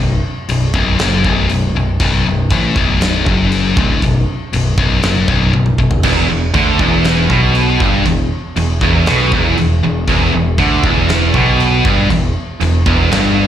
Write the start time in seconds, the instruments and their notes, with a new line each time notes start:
0.00 picked electric bass B0, distorted electric guitar B1
0.49 picked electric bass B0, distorted electric guitar B1, china
0.74 picked electric bass B0, distorted electric guitar B1, kick
0.99 picked electric bass F#1, distorted electric guitar F#2, snare, china
1.24 picked electric bass B0, distorted electric guitar B1, kick
1.49 picked electric bass B0, distorted electric guitar B1, china
1.75 picked electric bass B0, distorted electric guitar B1
2.00 picked electric bass B0, distorted electric guitar B1, kick, china
2.26 picked electric bass B0, distorted electric guitar B1
2.50 picked electric bass A1, distorted electric guitar A2, kick, china
2.76 picked electric bass B0, distorted electric guitar B1, kick
3.01 snare, china
3.26 picked electric bass F#1, distorted electric guitar F#2, kick
3.52 china
3.77 picked electric bass D1, distorted electric guitar D2, kick
4.02 picked electric bass B0, distorted electric guitar B1, kick, china
4.53 picked electric bass B0, distorted electric guitar B1, china
4.77 picked electric bass B0, distorted electric guitar B1, kick
5.02 picked electric bass F#1, distorted electric guitar F#2, snare, china
5.28 picked electric bass B0, distorted electric guitar B1, kick
5.53 picked electric bass B0, distorted electric guitar B1, high tom
5.66 mid tom
5.78 picked electric bass B0, distorted electric guitar B1, kick
5.91 floor tom
6.03 picked electric bass E1, distorted electric guitar E2, kick, crash, china
6.29 picked electric bass E1, distorted electric guitar E2
6.54 picked electric bass D2, distorted electric guitar D3, kick, china
6.79 picked electric bass E1, distorted electric guitar E2, kick
7.04 snare, china
7.30 picked electric bass B1, distorted electric guitar B2, kick
7.55 china
7.80 picked electric bass G1, distorted electric guitar G2, kick
8.06 picked electric bass E1, distorted electric guitar E2, kick, china
8.56 picked electric bass E1, distorted electric guitar E2, china
8.81 picked electric bass E1, distorted electric guitar E2, kick
9.06 picked electric bass B1, distorted electric guitar B2, snare, china
9.32 picked electric bass E1, distorted electric guitar E2, kick
9.57 picked electric bass E1, distorted electric guitar E2, china
9.83 picked electric bass E1, distorted electric guitar E2
10.08 picked electric bass E1, distorted electric guitar E2, kick, china
10.33 picked electric bass E1, distorted electric guitar E2
10.58 picked electric bass D2, distorted electric guitar D3, kick, china
10.83 picked electric bass E1, distorted electric guitar E2, kick
11.09 snare, china
11.34 picked electric bass B1, distorted electric guitar B2, kick
11.60 china
11.85 picked electric bass G1, distorted electric guitar G2, kick
12.10 picked electric bass E1, distorted electric guitar E2, kick, china
12.61 picked electric bass E1, distorted electric guitar E2, china
12.86 picked electric bass E1, distorted electric guitar E2, kick
13.11 picked electric bass G1, distorted electric guitar G2, snare, china